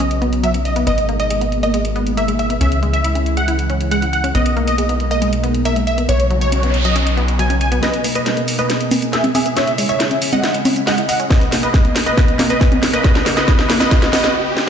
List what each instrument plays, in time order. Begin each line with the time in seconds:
Already playing: analog synth bass B1, analog synth pad C#3 F#3 B3 D#4, supersaw synth D#5
0.00 synth pluck C#4, closed hi-hat
0.11 closed hi-hat
0.22 synth pluck B3, closed hi-hat
0.33 closed hi-hat
0.43 synth pluck F#3, supersaw synth E5, closed hi-hat
0.54 synth pluck C#4, closed hi-hat
0.65 supersaw synth D#5, closed hi-hat
0.76 synth pluck B3, closed hi-hat
0.87 analog synth bass G#1, analog synth pad B2 G#3 A#3, synth pluck B3, supersaw synth D#5, closed hi-hat
0.98 closed hi-hat
1.09 synth pluck A#3, closed hi-hat
1.20 supersaw synth D#5, closed hi-hat
1.30 synth pluck G#3, closed hi-hat
1.41 synth pluck B3, closed hi-hat
1.52 closed hi-hat
1.63 synth pluck A#3, supersaw synth D#5, closed hi-hat
1.74 synth pluck G#3, closed hi-hat
1.85 closed hi-hat
1.96 synth pluck B3, closed hi-hat
2.07 closed hi-hat
2.17 synth pluck A#3, supersaw synth E5, closed hi-hat
2.28 synth pluck G#3, closed hi-hat
2.39 supersaw synth E5, closed hi-hat
2.50 synth pluck B3, closed hi-hat
2.61 analog synth bass C#2, analog synth pad C#3 E3 E4, synth pluck C#4, supersaw synth E5, closed hi-hat
2.72 closed hi-hat
2.83 synth pluck G#3, closed hi-hat
2.93 supersaw synth E5, closed hi-hat
3.04 synth pluck E4, closed hi-hat
3.15 synth pluck C#4, closed hi-hat
3.26 closed hi-hat
3.37 synth pluck G#3, supersaw synth F#5, closed hi-hat
3.48 synth pluck E4, closed hi-hat
3.59 closed hi-hat
3.70 synth pluck C#4, closed hi-hat
3.81 closed hi-hat
3.91 synth pluck G#3, supersaw synth F#5, closed hi-hat
4.02 synth pluck E4, closed hi-hat
4.13 supersaw synth F#5, closed hi-hat
4.24 synth pluck C#4, closed hi-hat
4.35 analog synth bass B1, analog synth pad B2 G#3 A#3 D#4, synth pluck B3, supersaw synth D#5, closed hi-hat
4.46 closed hi-hat
4.57 synth pluck A#3, closed hi-hat
4.67 supersaw synth D#5, closed hi-hat
4.78 synth pluck G#3, closed hi-hat
4.89 synth pluck B3, closed hi-hat
5.00 closed hi-hat
5.11 synth pluck A#3, supersaw synth D#5, closed hi-hat
5.22 synth pluck G#3, closed hi-hat
5.33 closed hi-hat
5.44 synth pluck B3, closed hi-hat
5.54 closed hi-hat
5.65 synth pluck A#3, supersaw synth E5, closed hi-hat
5.76 synth pluck G#3, closed hi-hat
5.87 supersaw synth E5, closed hi-hat
5.98 synth pluck B3, closed hi-hat
6.09 analog synth bass B1, analog synth pad C#3 F#3 B3 D#4, synth pluck B3, supersaw synth C#5, closed hi-hat, noise sweep
6.20 closed hi-hat
6.30 synth pluck F#3, closed hi-hat
6.41 supersaw synth C#5, closed hi-hat
6.52 synth pluck C#4, closed hi-hat
6.63 synth pluck B3, closed hi-hat
6.74 closed hi-hat
6.85 synth pluck F#3, supersaw synth D#5, closed hi-hat
6.96 synth pluck C#4, closed hi-hat
7.07 closed hi-hat
7.17 synth pluck B3, closed hi-hat
7.28 closed hi-hat
7.39 synth pluck F#3, supersaw synth G#5, closed hi-hat
7.50 synth pluck C#4, closed hi-hat
7.61 supersaw synth G#5, closed hi-hat
7.72 synth pluck B3, closed hi-hat
7.83 analog synth pad B2 A#3 D#4 G#4, synth pluck B3, supersaw synth B4 D#5, grand piano D#5, snare, closed hi-hat, riser, shaker
7.94 closed hi-hat
8.04 synth pluck A#3, open hi-hat, shaker
8.15 supersaw synth B4 D#5, grand piano D#5, closed hi-hat, shaker
8.26 synth pluck G#3, snare, closed hi-hat, shaker
8.37 synth pluck B3, closed hi-hat
8.48 open hi-hat, shaker
8.59 synth pluck A#3, supersaw synth B4 D#5, grand piano D#5, closed hi-hat, shaker
8.70 synth pluck G#3, snare, closed hi-hat, shaker
8.80 closed hi-hat
8.91 synth pluck B3, open hi-hat, high conga, shaker
9.02 closed hi-hat, shaker
9.13 synth pluck A#3, supersaw synth G#4 E5, grand piano E5, snare, closed hi-hat, shaker
9.24 synth pluck G#3, closed hi-hat, high conga
9.35 supersaw synth G#4 E5, grand piano E5, open hi-hat, high conga, shaker
9.46 synth pluck B3, closed hi-hat, shaker
9.57 analog synth pad C#3 G#3 E4, synth pluck C#4, supersaw synth C#5 E5, grand piano E5, snare, closed hi-hat, shaker
9.67 closed hi-hat
9.78 synth pluck G#3, open hi-hat, shaker
9.89 supersaw synth C#5 E5, grand piano E5, closed hi-hat, shaker
10.00 synth pluck E4, snare, closed hi-hat, shaker
10.11 synth pluck C#4, closed hi-hat
10.22 open hi-hat, shaker
10.33 synth pluck G#3, supersaw synth D#5 F#5, grand piano F#5, closed hi-hat, high conga, shaker
10.44 synth pluck E4, snare, closed hi-hat, shaker
10.54 closed hi-hat
10.65 synth pluck C#4, open hi-hat, high conga, shaker
10.76 closed hi-hat, shaker
10.87 synth pluck G#3, supersaw synth D#5 F#5, grand piano F#5, snare, open hi-hat, shaker
10.98 synth pluck E4, closed hi-hat
11.09 supersaw synth D#5 F#5, grand piano F#5, open hi-hat, shaker
11.20 synth pluck C#4, closed hi-hat, shaker
11.30 analog synth pad B2 A#3 D#4 G#4, synth pluck B3, supersaw synth B4 D#5, grand piano D#5, kick, snare, closed hi-hat, shaker
11.41 closed hi-hat
11.52 synth pluck A#3, snare, open hi-hat, shaker
11.63 supersaw synth B4 D#5, grand piano D#5, closed hi-hat, shaker
11.74 synth pluck G#3, kick, snare, closed hi-hat, shaker
11.85 synth pluck B3, closed hi-hat
11.96 snare, open hi-hat, shaker
12.06 synth pluck A#3, supersaw synth B4 D#5, grand piano D#5, closed hi-hat, shaker
12.17 synth pluck B3, supersaw synth B4 D#5, grand piano D#5, kick, snare, closed hi-hat, shaker
12.28 closed hi-hat
12.39 synth pluck A#3, snare, open hi-hat, high conga, shaker
12.50 supersaw synth B4 D#5, grand piano D#5, closed hi-hat, shaker
12.61 synth pluck G#3, kick, snare, closed hi-hat, shaker
12.72 synth pluck B3, closed hi-hat, high conga
12.83 snare, open hi-hat, high conga, shaker
12.93 synth pluck A#3, supersaw synth B4 D#5, grand piano D#5, closed hi-hat, shaker
13.04 analog synth pad C#3 B3 F#4, synth pluck B3, supersaw synth B4 D#5, grand piano D#5, kick, snare, closed hi-hat, shaker
13.15 snare, closed hi-hat
13.26 synth pluck A#3, snare, open hi-hat, shaker
13.37 supersaw synth B4 D#5, grand piano D#5, snare, closed hi-hat, shaker
13.48 synth pluck B3, supersaw synth B4 D#5, grand piano D#5, kick, snare, closed hi-hat, shaker
13.59 snare, closed hi-hat
13.70 synth pluck A#3, snare, open hi-hat, shaker
13.80 supersaw synth B4 D#5, grand piano D#5, snare, closed hi-hat, high conga, shaker
13.91 synth pluck B3, supersaw synth B4 D#5, grand piano D#5, kick, snare, closed hi-hat, shaker
14.02 snare, closed hi-hat
14.13 synth pluck B3, supersaw synth B4 D#5, grand piano D#5, snare, open hi-hat, high conga, shaker
14.24 snare, closed hi-hat, shaker
14.57 snare